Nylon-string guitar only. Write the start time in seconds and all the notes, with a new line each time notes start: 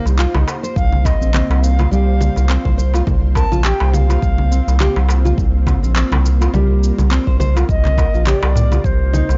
0.19 F4
0.35 D#4
0.63 C5
1.04 C4
1.21 C4
1.34 C4
1.79 F4
1.91 G3
2.49 C4
2.65 C5
2.78 C5
2.94 F4
3.35 A#4
3.51 F4
3.64 G4
4.09 F4
4.51 C4
4.80 G4
4.96 C4
5.25 F4
5.67 C4
5.83 C4
5.96 C4
6.41 F4
6.54 G3
7.11 C4
7.27 C5
7.40 C5
7.56 F4
7.98 A#4
8.14 F4
8.27 G4
8.72 F4
9.13 D#4